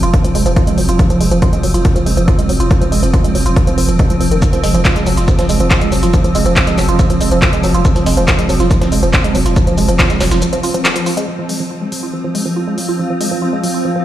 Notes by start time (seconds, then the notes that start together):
Already playing: F3 C4
0.03 F1 F4, closed hi-hat
0.14 F3, kick, closed hi-hat
0.24 F3, closed hi-hat
0.35 F1 G#3, open hi-hat
0.46 F1 F3, closed hi-hat
0.56 F4, kick, closed hi-hat
0.67 G#3, closed hi-hat
0.78 F1 F#3, open hi-hat
0.89 F1 F4, closed hi-hat
0.99 F3, kick, closed hi-hat
1.10 F3, closed hi-hat
1.21 F1 G#3, open hi-hat
1.31 F1 F3, closed hi-hat
1.42 F4, kick, closed hi-hat
1.53 G#3, closed hi-hat
1.63 F1 F#3, open hi-hat
1.74 F1 F4, closed hi-hat
1.85 F3, kick, closed hi-hat
1.96 F3, closed hi-hat
2.06 F1 G#3, open hi-hat
2.17 F1 F3, closed hi-hat
2.28 F4, kick, closed hi-hat
2.39 G#3, closed hi-hat
2.49 F1 F#3, open hi-hat
2.60 F1 F4, closed hi-hat
2.71 F3, kick, closed hi-hat
2.81 F3, closed hi-hat
2.92 F1 G#3, open hi-hat
3.03 F1 F3, closed hi-hat
3.13 F4, kick, closed hi-hat
3.24 G#3, closed hi-hat
3.35 F1 F#3, open hi-hat
3.46 F1 F4, closed hi-hat
3.56 F3, kick, closed hi-hat
3.67 F3, closed hi-hat
3.78 F1 F3, open hi-hat
3.89 F1 F3, closed hi-hat
3.99 G#3, kick, closed hi-hat
4.10 F3, closed hi-hat
4.21 F1 F3, open hi-hat
4.31 F1 D#3, closed hi-hat
4.42 F3, kick, closed hi-hat, shaker
4.53 F3, closed hi-hat
4.63 F1 G#3, open hi-hat
4.74 F1 F3, closed hi-hat
4.85 F4, kick, snare, clap, closed hi-hat, shaker
4.96 G#3, snare, closed hi-hat
5.06 F1 F#3, open hi-hat, shaker
5.17 F1 F4, snare, closed hi-hat
5.28 F3, kick, closed hi-hat, shaker
5.39 F3, snare, closed hi-hat
5.49 F1 G#3, open hi-hat, shaker
5.60 F1 F3, closed hi-hat
5.71 F4, kick, snare, clap, closed hi-hat, shaker
5.81 G#3, closed hi-hat
5.92 F1 F#3, open hi-hat, shaker
6.03 F1 F4, closed hi-hat
6.13 F3, kick, closed hi-hat, shaker
6.24 F3, closed hi-hat
6.35 F1 G#3, open hi-hat, shaker
6.46 F1 F3, closed hi-hat
6.56 F4, kick, snare, clap, closed hi-hat, shaker
6.67 G#3, snare, closed hi-hat
6.78 F1 F#3, clap, open hi-hat, shaker
6.89 F1 F4, closed hi-hat
6.99 F3, kick, closed hi-hat, shaker
7.10 F3, closed hi-hat
7.21 F1 G#3, open hi-hat, shaker
7.31 F1 F3, closed hi-hat
7.42 F4, kick, snare, clap, closed hi-hat, shaker
7.53 G#3, closed hi-hat
7.63 F1 F#3, open hi-hat, shaker
7.74 F1 F4, closed hi-hat
7.85 F3, kick, closed hi-hat, shaker
7.96 F3, closed hi-hat
8.06 F1 G#3, open hi-hat
8.17 F1 F3, closed hi-hat
8.28 F4, kick, snare, clap, closed hi-hat, shaker
8.39 G#3, snare, closed hi-hat
8.49 F1 F#3, open hi-hat, shaker
8.60 F1 F4, snare, closed hi-hat
8.71 F3, kick, closed hi-hat, shaker
8.81 F3, snare, closed hi-hat
8.92 F1 G#3, open hi-hat, shaker
9.03 F1 F3, closed hi-hat
9.13 F4, kick, snare, clap, closed hi-hat, shaker
9.24 G#3, closed hi-hat
9.35 F1 F#3, open hi-hat, shaker
9.46 F1 F4, closed hi-hat
9.56 F3, kick, closed hi-hat, shaker
9.67 F3, closed hi-hat
9.78 F1 G#3, open hi-hat, shaker
9.89 F1 F3, closed hi-hat
9.99 F4, kick, snare, clap, closed hi-hat, shaker
10.10 G#3, snare, closed hi-hat
10.20 F1 F#3, snare, clap, open hi-hat, shaker
10.31 F1 F4, snare, closed hi-hat, shaker
10.42 F3, closed hi-hat, shaker
10.53 F3, closed hi-hat
10.63 F4, open hi-hat, shaker
10.74 F3, closed hi-hat
10.85 F3, snare, clap, closed hi-hat, shaker
10.96 F3, closed hi-hat
11.06 F4, open hi-hat, shaker
11.17 G#3, closed hi-hat
11.28 F3 C4
11.38 F3 F5
11.46 G#3 F4, open hi-hat
11.60 F3
11.71 F4
11.82 G#3
11.92 F#3, open hi-hat
12.03 F4
12.13 F3
12.24 F3
12.35 G#3, open hi-hat
12.46 F3
12.56 F4 C6
12.67 G#3
12.78 F#3, open hi-hat
12.89 F4
12.99 F3
13.10 F3
13.21 G#3, open hi-hat
13.31 F3
13.42 F4
13.53 G#3
13.63 F#3, open hi-hat
13.74 F4
13.85 F3
13.96 F3